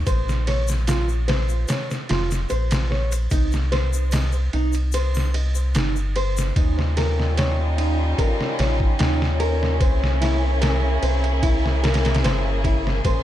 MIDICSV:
0, 0, Header, 1, 5, 480
1, 0, Start_track
1, 0, Tempo, 810811
1, 43, Time_signature, 4, 2, 24, 8
1, 7832, End_track
2, 0, Start_track
2, 0, Title_t, "Nylon-string guitar"
2, 0, Program_c, 0, 24
2, 38, Note_on_c, 0, 72, 101
2, 269, Note_off_c, 0, 72, 0
2, 281, Note_on_c, 0, 73, 76
2, 402, Note_off_c, 0, 73, 0
2, 519, Note_on_c, 0, 65, 91
2, 641, Note_off_c, 0, 65, 0
2, 757, Note_on_c, 0, 72, 104
2, 989, Note_off_c, 0, 72, 0
2, 997, Note_on_c, 0, 73, 75
2, 1120, Note_off_c, 0, 73, 0
2, 1239, Note_on_c, 0, 65, 97
2, 1361, Note_off_c, 0, 65, 0
2, 1478, Note_on_c, 0, 72, 98
2, 1709, Note_off_c, 0, 72, 0
2, 1721, Note_on_c, 0, 73, 71
2, 1841, Note_off_c, 0, 73, 0
2, 1961, Note_on_c, 0, 63, 100
2, 2082, Note_off_c, 0, 63, 0
2, 2201, Note_on_c, 0, 72, 102
2, 2431, Note_off_c, 0, 72, 0
2, 2443, Note_on_c, 0, 75, 72
2, 2563, Note_off_c, 0, 75, 0
2, 2684, Note_on_c, 0, 63, 103
2, 2803, Note_off_c, 0, 63, 0
2, 2924, Note_on_c, 0, 72, 98
2, 3152, Note_off_c, 0, 72, 0
2, 3163, Note_on_c, 0, 75, 75
2, 3282, Note_off_c, 0, 75, 0
2, 3404, Note_on_c, 0, 63, 93
2, 3523, Note_off_c, 0, 63, 0
2, 3647, Note_on_c, 0, 72, 95
2, 3874, Note_off_c, 0, 72, 0
2, 3886, Note_on_c, 0, 63, 95
2, 4004, Note_off_c, 0, 63, 0
2, 4127, Note_on_c, 0, 70, 99
2, 4354, Note_off_c, 0, 70, 0
2, 4366, Note_on_c, 0, 73, 74
2, 4484, Note_off_c, 0, 73, 0
2, 4605, Note_on_c, 0, 63, 97
2, 4723, Note_off_c, 0, 63, 0
2, 4847, Note_on_c, 0, 70, 99
2, 5073, Note_off_c, 0, 70, 0
2, 5089, Note_on_c, 0, 73, 80
2, 5205, Note_off_c, 0, 73, 0
2, 5324, Note_on_c, 0, 63, 100
2, 5443, Note_off_c, 0, 63, 0
2, 5565, Note_on_c, 0, 70, 104
2, 5792, Note_off_c, 0, 70, 0
2, 5806, Note_on_c, 0, 72, 79
2, 5924, Note_off_c, 0, 72, 0
2, 6046, Note_on_c, 0, 64, 106
2, 6164, Note_off_c, 0, 64, 0
2, 6284, Note_on_c, 0, 70, 94
2, 6512, Note_off_c, 0, 70, 0
2, 6527, Note_on_c, 0, 72, 74
2, 6645, Note_off_c, 0, 72, 0
2, 6764, Note_on_c, 0, 64, 100
2, 6883, Note_off_c, 0, 64, 0
2, 7006, Note_on_c, 0, 70, 103
2, 7233, Note_off_c, 0, 70, 0
2, 7247, Note_on_c, 0, 72, 81
2, 7364, Note_off_c, 0, 72, 0
2, 7486, Note_on_c, 0, 64, 101
2, 7604, Note_off_c, 0, 64, 0
2, 7727, Note_on_c, 0, 72, 99
2, 7832, Note_off_c, 0, 72, 0
2, 7832, End_track
3, 0, Start_track
3, 0, Title_t, "Violin section"
3, 0, Program_c, 1, 48
3, 3891, Note_on_c, 1, 55, 75
3, 3891, Note_on_c, 1, 63, 73
3, 3894, Note_on_c, 1, 61, 89
3, 3894, Note_on_c, 1, 65, 74
3, 5788, Note_off_c, 1, 55, 0
3, 5788, Note_off_c, 1, 63, 0
3, 5789, Note_off_c, 1, 65, 0
3, 5809, Note_on_c, 1, 58, 81
3, 5811, Note_on_c, 1, 68, 71
3, 5812, Note_on_c, 1, 64, 73
3, 7705, Note_off_c, 1, 61, 0
3, 7709, Note_off_c, 1, 64, 0
3, 7730, Note_on_c, 1, 61, 80
3, 7731, Note_on_c, 1, 84, 88
3, 7832, Note_off_c, 1, 58, 0
3, 7832, Note_off_c, 1, 61, 0
3, 7832, Note_off_c, 1, 68, 0
3, 7832, Note_off_c, 1, 84, 0
3, 7832, End_track
4, 0, Start_track
4, 0, Title_t, "Analog synth bass"
4, 0, Program_c, 2, 38
4, 42, Note_on_c, 2, 34, 98
4, 981, Note_off_c, 2, 34, 0
4, 1246, Note_on_c, 2, 29, 101
4, 1457, Note_off_c, 2, 29, 0
4, 1488, Note_on_c, 2, 34, 85
4, 1944, Note_off_c, 2, 34, 0
4, 1962, Note_on_c, 2, 36, 97
4, 2661, Note_off_c, 2, 36, 0
4, 2686, Note_on_c, 2, 36, 89
4, 3408, Note_on_c, 2, 31, 80
4, 3417, Note_off_c, 2, 36, 0
4, 3864, Note_off_c, 2, 31, 0
4, 3887, Note_on_c, 2, 39, 101
4, 4823, Note_off_c, 2, 39, 0
4, 5088, Note_on_c, 2, 34, 98
4, 5298, Note_off_c, 2, 34, 0
4, 5327, Note_on_c, 2, 39, 85
4, 5807, Note_on_c, 2, 36, 95
4, 5816, Note_off_c, 2, 39, 0
4, 6503, Note_off_c, 2, 36, 0
4, 6527, Note_on_c, 2, 36, 90
4, 7249, Note_on_c, 2, 31, 84
4, 7258, Note_off_c, 2, 36, 0
4, 7704, Note_off_c, 2, 31, 0
4, 7725, Note_on_c, 2, 34, 101
4, 7832, Note_off_c, 2, 34, 0
4, 7832, End_track
5, 0, Start_track
5, 0, Title_t, "Drums"
5, 39, Note_on_c, 9, 51, 88
5, 39, Note_on_c, 9, 82, 61
5, 40, Note_on_c, 9, 36, 105
5, 98, Note_off_c, 9, 82, 0
5, 99, Note_off_c, 9, 36, 0
5, 99, Note_off_c, 9, 51, 0
5, 171, Note_on_c, 9, 82, 37
5, 173, Note_on_c, 9, 38, 43
5, 230, Note_off_c, 9, 82, 0
5, 233, Note_off_c, 9, 38, 0
5, 279, Note_on_c, 9, 51, 71
5, 287, Note_on_c, 9, 38, 52
5, 339, Note_off_c, 9, 51, 0
5, 346, Note_off_c, 9, 38, 0
5, 401, Note_on_c, 9, 82, 82
5, 413, Note_on_c, 9, 38, 37
5, 460, Note_off_c, 9, 82, 0
5, 472, Note_off_c, 9, 38, 0
5, 517, Note_on_c, 9, 51, 84
5, 520, Note_on_c, 9, 82, 65
5, 525, Note_on_c, 9, 38, 112
5, 577, Note_off_c, 9, 51, 0
5, 579, Note_off_c, 9, 82, 0
5, 584, Note_off_c, 9, 38, 0
5, 643, Note_on_c, 9, 82, 35
5, 702, Note_off_c, 9, 82, 0
5, 759, Note_on_c, 9, 51, 74
5, 766, Note_on_c, 9, 38, 104
5, 818, Note_off_c, 9, 51, 0
5, 825, Note_off_c, 9, 38, 0
5, 882, Note_on_c, 9, 82, 76
5, 942, Note_off_c, 9, 82, 0
5, 994, Note_on_c, 9, 82, 58
5, 998, Note_on_c, 9, 51, 75
5, 1006, Note_on_c, 9, 38, 97
5, 1053, Note_off_c, 9, 82, 0
5, 1057, Note_off_c, 9, 51, 0
5, 1065, Note_off_c, 9, 38, 0
5, 1127, Note_on_c, 9, 82, 34
5, 1133, Note_on_c, 9, 38, 46
5, 1187, Note_off_c, 9, 82, 0
5, 1192, Note_off_c, 9, 38, 0
5, 1239, Note_on_c, 9, 51, 77
5, 1247, Note_on_c, 9, 38, 97
5, 1298, Note_off_c, 9, 51, 0
5, 1306, Note_off_c, 9, 38, 0
5, 1367, Note_on_c, 9, 82, 70
5, 1373, Note_on_c, 9, 38, 43
5, 1427, Note_off_c, 9, 82, 0
5, 1433, Note_off_c, 9, 38, 0
5, 1477, Note_on_c, 9, 82, 57
5, 1480, Note_on_c, 9, 51, 61
5, 1536, Note_off_c, 9, 82, 0
5, 1539, Note_off_c, 9, 51, 0
5, 1603, Note_on_c, 9, 51, 81
5, 1605, Note_on_c, 9, 82, 36
5, 1611, Note_on_c, 9, 38, 115
5, 1662, Note_off_c, 9, 51, 0
5, 1664, Note_off_c, 9, 82, 0
5, 1670, Note_off_c, 9, 38, 0
5, 1728, Note_on_c, 9, 38, 43
5, 1787, Note_off_c, 9, 38, 0
5, 1846, Note_on_c, 9, 82, 78
5, 1848, Note_on_c, 9, 51, 59
5, 1905, Note_off_c, 9, 82, 0
5, 1907, Note_off_c, 9, 51, 0
5, 1955, Note_on_c, 9, 82, 58
5, 1961, Note_on_c, 9, 36, 103
5, 1962, Note_on_c, 9, 51, 86
5, 2015, Note_off_c, 9, 82, 0
5, 2020, Note_off_c, 9, 36, 0
5, 2021, Note_off_c, 9, 51, 0
5, 2083, Note_on_c, 9, 82, 37
5, 2095, Note_on_c, 9, 38, 52
5, 2142, Note_off_c, 9, 82, 0
5, 2154, Note_off_c, 9, 38, 0
5, 2203, Note_on_c, 9, 51, 70
5, 2210, Note_on_c, 9, 38, 60
5, 2262, Note_off_c, 9, 51, 0
5, 2270, Note_off_c, 9, 38, 0
5, 2327, Note_on_c, 9, 82, 77
5, 2386, Note_off_c, 9, 82, 0
5, 2434, Note_on_c, 9, 81, 57
5, 2439, Note_on_c, 9, 82, 57
5, 2440, Note_on_c, 9, 51, 85
5, 2448, Note_on_c, 9, 38, 111
5, 2493, Note_off_c, 9, 81, 0
5, 2498, Note_off_c, 9, 82, 0
5, 2499, Note_off_c, 9, 51, 0
5, 2507, Note_off_c, 9, 38, 0
5, 2559, Note_on_c, 9, 82, 36
5, 2618, Note_off_c, 9, 82, 0
5, 2683, Note_on_c, 9, 51, 60
5, 2742, Note_off_c, 9, 51, 0
5, 2798, Note_on_c, 9, 82, 63
5, 2809, Note_on_c, 9, 51, 43
5, 2857, Note_off_c, 9, 82, 0
5, 2869, Note_off_c, 9, 51, 0
5, 2912, Note_on_c, 9, 82, 62
5, 2925, Note_on_c, 9, 51, 83
5, 2972, Note_off_c, 9, 82, 0
5, 2984, Note_off_c, 9, 51, 0
5, 3044, Note_on_c, 9, 82, 34
5, 3047, Note_on_c, 9, 81, 65
5, 3060, Note_on_c, 9, 38, 45
5, 3103, Note_off_c, 9, 82, 0
5, 3106, Note_off_c, 9, 81, 0
5, 3119, Note_off_c, 9, 38, 0
5, 3163, Note_on_c, 9, 51, 69
5, 3222, Note_off_c, 9, 51, 0
5, 3285, Note_on_c, 9, 82, 68
5, 3344, Note_off_c, 9, 82, 0
5, 3402, Note_on_c, 9, 51, 86
5, 3402, Note_on_c, 9, 82, 55
5, 3410, Note_on_c, 9, 38, 123
5, 3461, Note_off_c, 9, 82, 0
5, 3462, Note_off_c, 9, 51, 0
5, 3469, Note_off_c, 9, 38, 0
5, 3528, Note_on_c, 9, 82, 37
5, 3587, Note_off_c, 9, 82, 0
5, 3644, Note_on_c, 9, 51, 65
5, 3704, Note_off_c, 9, 51, 0
5, 3771, Note_on_c, 9, 82, 80
5, 3780, Note_on_c, 9, 38, 45
5, 3830, Note_off_c, 9, 82, 0
5, 3839, Note_off_c, 9, 38, 0
5, 3884, Note_on_c, 9, 36, 105
5, 3885, Note_on_c, 9, 51, 84
5, 3943, Note_off_c, 9, 36, 0
5, 3944, Note_off_c, 9, 51, 0
5, 4018, Note_on_c, 9, 38, 45
5, 4077, Note_off_c, 9, 38, 0
5, 4126, Note_on_c, 9, 51, 69
5, 4133, Note_on_c, 9, 38, 54
5, 4185, Note_off_c, 9, 51, 0
5, 4193, Note_off_c, 9, 38, 0
5, 4260, Note_on_c, 9, 38, 36
5, 4319, Note_off_c, 9, 38, 0
5, 4366, Note_on_c, 9, 51, 83
5, 4374, Note_on_c, 9, 38, 111
5, 4425, Note_off_c, 9, 51, 0
5, 4433, Note_off_c, 9, 38, 0
5, 4607, Note_on_c, 9, 51, 63
5, 4666, Note_off_c, 9, 51, 0
5, 4845, Note_on_c, 9, 36, 95
5, 4847, Note_on_c, 9, 51, 83
5, 4904, Note_off_c, 9, 36, 0
5, 4906, Note_off_c, 9, 51, 0
5, 4977, Note_on_c, 9, 38, 47
5, 5036, Note_off_c, 9, 38, 0
5, 5085, Note_on_c, 9, 51, 65
5, 5092, Note_on_c, 9, 38, 58
5, 5144, Note_off_c, 9, 51, 0
5, 5152, Note_off_c, 9, 38, 0
5, 5210, Note_on_c, 9, 36, 93
5, 5269, Note_off_c, 9, 36, 0
5, 5323, Note_on_c, 9, 51, 84
5, 5330, Note_on_c, 9, 38, 118
5, 5382, Note_off_c, 9, 51, 0
5, 5390, Note_off_c, 9, 38, 0
5, 5458, Note_on_c, 9, 38, 56
5, 5517, Note_off_c, 9, 38, 0
5, 5564, Note_on_c, 9, 51, 58
5, 5623, Note_off_c, 9, 51, 0
5, 5700, Note_on_c, 9, 38, 47
5, 5759, Note_off_c, 9, 38, 0
5, 5805, Note_on_c, 9, 36, 110
5, 5805, Note_on_c, 9, 51, 81
5, 5864, Note_off_c, 9, 36, 0
5, 5864, Note_off_c, 9, 51, 0
5, 5941, Note_on_c, 9, 38, 52
5, 6000, Note_off_c, 9, 38, 0
5, 6049, Note_on_c, 9, 51, 76
5, 6056, Note_on_c, 9, 38, 60
5, 6108, Note_off_c, 9, 51, 0
5, 6116, Note_off_c, 9, 38, 0
5, 6285, Note_on_c, 9, 51, 86
5, 6293, Note_on_c, 9, 38, 111
5, 6345, Note_off_c, 9, 51, 0
5, 6352, Note_off_c, 9, 38, 0
5, 6527, Note_on_c, 9, 51, 65
5, 6587, Note_off_c, 9, 51, 0
5, 6654, Note_on_c, 9, 51, 45
5, 6713, Note_off_c, 9, 51, 0
5, 6765, Note_on_c, 9, 36, 107
5, 6766, Note_on_c, 9, 51, 78
5, 6824, Note_off_c, 9, 36, 0
5, 6825, Note_off_c, 9, 51, 0
5, 6901, Note_on_c, 9, 38, 44
5, 6960, Note_off_c, 9, 38, 0
5, 7007, Note_on_c, 9, 51, 68
5, 7015, Note_on_c, 9, 38, 84
5, 7067, Note_off_c, 9, 51, 0
5, 7069, Note_on_c, 9, 51, 70
5, 7074, Note_off_c, 9, 38, 0
5, 7077, Note_on_c, 9, 38, 84
5, 7128, Note_off_c, 9, 51, 0
5, 7132, Note_on_c, 9, 51, 65
5, 7136, Note_off_c, 9, 38, 0
5, 7140, Note_on_c, 9, 38, 89
5, 7190, Note_off_c, 9, 51, 0
5, 7190, Note_on_c, 9, 51, 63
5, 7197, Note_off_c, 9, 38, 0
5, 7197, Note_on_c, 9, 38, 85
5, 7248, Note_off_c, 9, 51, 0
5, 7248, Note_on_c, 9, 51, 95
5, 7256, Note_off_c, 9, 38, 0
5, 7256, Note_on_c, 9, 38, 118
5, 7307, Note_off_c, 9, 51, 0
5, 7315, Note_off_c, 9, 38, 0
5, 7485, Note_on_c, 9, 36, 90
5, 7486, Note_on_c, 9, 51, 62
5, 7544, Note_off_c, 9, 36, 0
5, 7546, Note_off_c, 9, 51, 0
5, 7618, Note_on_c, 9, 38, 51
5, 7678, Note_off_c, 9, 38, 0
5, 7723, Note_on_c, 9, 51, 86
5, 7724, Note_on_c, 9, 36, 107
5, 7782, Note_off_c, 9, 51, 0
5, 7783, Note_off_c, 9, 36, 0
5, 7832, End_track
0, 0, End_of_file